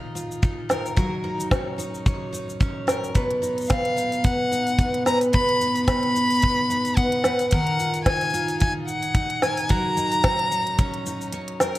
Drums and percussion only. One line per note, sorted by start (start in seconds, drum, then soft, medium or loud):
0.16 cabasa medium
0.31 cabasa soft
0.43 kick loud
0.43 cabasa soft
0.70 snare medium
0.70 cabasa medium
0.86 cabasa soft
0.97 kick medium
0.97 cabasa soft
1.40 cabasa medium
1.51 kick loud
1.51 snare medium
1.51 cabasa soft
1.79 cabasa medium
1.94 cabasa soft
2.06 kick loud
2.06 cabasa soft
2.34 cabasa medium
2.49 cabasa soft
2.61 kick loud
2.61 cabasa soft
2.88 snare medium
2.88 cabasa medium
3.04 cabasa soft
3.15 kick medium
3.15 closed hi-hat medium
3.15 cabasa soft
3.31 closed hi-hat soft
3.43 cabasa medium
3.58 closed hi-hat soft
3.58 cabasa soft
3.61 cabasa soft
3.64 cabasa soft
3.66 cabasa soft
3.69 kick loud
3.69 snare medium
3.69 closed hi-hat medium
3.69 cabasa soft
3.71 cabasa soft
3.85 closed hi-hat soft
3.98 cabasa medium
4.12 closed hi-hat soft
4.12 cabasa soft
4.24 kick loud
4.24 closed hi-hat medium
4.24 cabasa soft
4.52 cabasa medium
4.67 closed hi-hat soft
4.67 cabasa soft
4.79 kick loud
4.79 closed hi-hat medium
4.79 cabasa soft
4.94 closed hi-hat soft
5.06 snare medium
5.06 cabasa medium
5.21 closed hi-hat soft
5.21 cabasa soft
5.33 kick medium
5.33 closed hi-hat medium
5.33 cabasa soft
5.49 closed hi-hat soft
5.61 cabasa medium
5.76 closed hi-hat soft
5.76 cabasa soft
5.88 kick medium
5.88 snare medium
5.88 closed hi-hat medium
5.88 cabasa soft
6.03 closed hi-hat soft
6.16 cabasa medium
6.30 closed hi-hat soft
6.30 cabasa soft
6.34 cabasa soft
6.39 closed hi-hat medium
6.39 cabasa soft
6.43 kick loud
6.48 cabasa soft
6.52 cabasa soft
6.70 cabasa medium
6.85 closed hi-hat soft
6.85 cabasa soft
6.97 kick medium
6.97 closed hi-hat medium
6.97 cabasa soft
7.12 closed hi-hat soft
7.24 snare medium
7.24 cabasa medium
7.39 closed hi-hat soft
7.39 cabasa soft
7.51 kick medium
7.51 closed hi-hat medium
7.51 cabasa soft
7.67 closed hi-hat soft
7.79 cabasa medium
7.94 closed hi-hat soft
7.94 cabasa soft
8.06 kick medium
8.06 snare medium
8.06 closed hi-hat medium
8.06 cabasa soft
8.12 cabasa soft
8.16 cabasa soft
8.21 closed hi-hat soft
8.21 cabasa soft
8.25 cabasa soft
8.30 cabasa soft
8.34 cabasa medium
8.48 closed hi-hat soft
8.48 cabasa soft
8.60 kick loud
8.60 closed hi-hat medium
8.60 cabasa soft
8.88 cabasa medium
9.03 closed hi-hat soft
9.03 cabasa soft
9.15 kick loud
9.15 closed hi-hat medium
9.15 cabasa soft
9.30 closed hi-hat soft
9.42 snare medium
9.42 cabasa medium
9.57 closed hi-hat soft
9.57 cabasa soft
9.69 kick medium
9.69 closed hi-hat medium
9.69 cabasa soft
9.97 cabasa medium
10.12 closed hi-hat soft
10.12 cabasa soft
10.24 kick loud
10.24 snare medium
10.24 closed hi-hat medium
10.24 cabasa soft
10.39 closed hi-hat soft
10.52 cabasa medium
10.67 closed hi-hat soft
10.79 kick loud
10.79 closed hi-hat medium
10.79 cabasa soft
10.94 closed hi-hat soft
11.06 cabasa medium
11.21 cabasa soft
11.33 closed hi-hat medium
11.33 cabasa soft
11.48 closed hi-hat soft
11.60 snare medium
11.60 cabasa medium
11.75 closed hi-hat soft